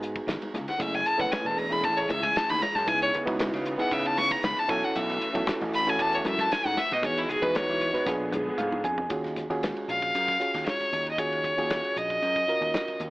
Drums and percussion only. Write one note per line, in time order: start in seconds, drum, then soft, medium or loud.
0.02 hi-hat pedal medium
0.02 muted conga soft
0.16 kick medium
0.16 ride medium
0.28 snare loud
0.28 hi-hat pedal medium
0.28 ride medium
0.28 high conga medium
0.42 ride medium
0.42 high conga medium
0.54 snare soft
0.54 hi-hat pedal medium
0.54 low conga medium
0.68 snare soft
0.68 ride medium
0.68 low conga medium
0.80 kick loud
0.80 hi-hat pedal medium
0.80 ride medium
0.80 muted conga soft
0.94 snare soft
0.94 ride medium
1.06 hi-hat pedal medium
1.20 kick medium
1.20 ride medium
1.32 snare loud
1.32 hi-hat pedal medium
1.32 ride medium
1.32 muted conga soft
1.32 high conga loud
1.46 snare soft
1.46 ride medium
1.58 hi-hat pedal medium
1.72 ride medium
1.84 kick medium
1.84 hi-hat pedal medium
1.84 ride medium
1.84 muted conga soft
1.98 ride medium
2.09 hi-hat pedal medium
2.09 muted conga soft
2.09 high conga medium
2.23 kick medium
2.23 ride medium
2.36 snare loud
2.36 hi-hat pedal medium
2.36 ride medium
2.50 ride medium
2.62 snare soft
2.62 hi-hat pedal medium
2.62 high conga medium
2.76 snare soft
2.76 ride medium
2.88 kick loud
2.88 hi-hat pedal medium
2.88 ride medium
2.88 muted conga soft
3.02 ride medium
3.14 hi-hat pedal medium
3.14 low conga medium
3.27 kick medium
3.27 ride medium
3.39 snare loud
3.39 hi-hat pedal medium
3.39 ride medium
3.39 muted conga soft
3.39 high conga loud
3.54 snare soft
3.54 ride medium
3.65 hi-hat pedal medium
3.79 snare soft
3.79 ride medium
3.91 kick medium
3.91 hi-hat pedal medium
3.91 ride medium
3.91 muted conga soft
4.06 ride medium
4.18 hi-hat pedal medium
4.18 muted conga soft
4.18 high conga medium
4.31 kick medium
4.31 ride medium
4.43 snare loud
4.43 hi-hat pedal medium
4.43 ride medium
4.43 high conga medium
4.57 ride medium
4.69 kick loud
4.69 snare soft
4.69 hi-hat pedal medium
4.83 snare soft
4.83 ride medium
4.95 hi-hat pedal medium
4.95 ride medium
4.95 muted conga soft
5.10 snare soft
5.10 ride medium
5.21 hi-hat pedal medium
5.35 kick medium
5.35 ride medium
5.47 snare loud
5.47 hi-hat pedal medium
5.47 ride medium
5.47 muted conga soft
5.47 high conga loud
5.61 snare soft
5.61 ride medium
5.73 hi-hat pedal medium
5.87 ride medium
5.99 kick medium
5.99 hi-hat pedal medium
5.99 ride medium
5.99 muted conga soft
6.13 ride medium
6.25 hi-hat pedal medium
6.25 muted conga soft
6.25 high conga medium
6.39 kick medium
6.39 ride medium
6.52 snare loud
6.52 hi-hat pedal medium
6.52 ride medium
6.66 ride medium
6.77 hi-hat pedal medium
6.77 high conga medium
6.91 snare soft
6.91 ride medium
7.03 kick loud
7.03 hi-hat pedal medium
7.03 ride medium
7.03 muted conga soft
7.17 ride medium
7.29 hi-hat pedal medium
7.29 low conga medium
7.43 kick medium
7.43 ride medium
7.55 snare loud
7.55 hi-hat pedal medium
7.55 ride medium
7.55 muted conga soft
7.55 high conga loud
7.68 snare soft
7.68 ride medium
7.81 hi-hat pedal medium
7.94 snare soft
7.94 ride medium
8.06 kick medium
8.06 snare medium
8.06 hi-hat pedal medium
8.06 muted conga soft
8.32 hi-hat pedal medium
8.32 high tom medium
8.32 muted conga soft
8.32 high conga medium
8.32 low conga medium
8.58 hi-hat pedal medium
8.58 mid tom medium
8.58 high conga medium
8.72 mid tom medium
8.84 floor tom medium
8.84 hi-hat pedal medium
8.98 floor tom medium
9.10 kick medium
9.10 hi-hat pedal medium
9.10 ride medium
9.10 muted conga soft
9.24 snare soft
9.24 ride soft
9.36 kick medium
9.36 snare soft
9.36 hi-hat pedal medium
9.36 high conga medium
9.50 ride medium
9.63 snare loud
9.63 hi-hat pedal medium
9.63 ride medium
9.63 high conga medium
9.77 ride medium
9.89 hi-hat pedal medium
9.89 muted conga soft
10.02 kick medium
10.02 ride medium
10.15 hi-hat pedal medium
10.15 ride medium
10.15 muted conga soft
10.28 kick medium
10.28 snare soft
10.28 ride soft
10.40 hi-hat pedal medium
10.40 muted conga soft
10.54 snare soft
10.54 ride medium
10.66 snare medium
10.66 hi-hat pedal medium
10.66 ride medium
10.66 high conga medium
10.80 ride medium
10.93 hi-hat pedal medium
11.07 ride medium
11.18 kick medium
11.18 hi-hat pedal medium
11.18 ride medium
11.18 muted conga soft
11.32 ride medium
11.44 kick medium
11.44 hi-hat pedal medium
11.58 ride medium
11.70 snare loud
11.70 hi-hat pedal medium
11.70 ride medium
11.70 high conga medium
11.84 ride medium
11.96 hi-hat pedal medium
11.96 muted conga soft
12.10 kick medium
12.10 ride medium
12.22 hi-hat pedal medium
12.22 ride medium
12.22 muted conga soft
12.36 kick medium
12.36 ride soft
12.48 hi-hat pedal medium
12.48 muted conga soft
12.62 ride medium
12.74 snare loud
12.74 hi-hat pedal medium
12.74 ride medium
12.74 high conga medium
12.88 ride medium
13.00 hi-hat pedal medium